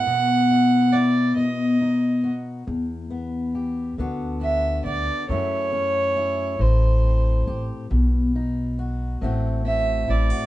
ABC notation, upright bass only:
X:1
M:6/8
L:1/16
Q:3/8=46
K:Bphr
V:1 name="Upright bass" clef=bass
z12 | E,,6 D,,4 D,, z | F,,6 A,,,4 A,,, z | B,,,6 A,,,4 A,,, z |]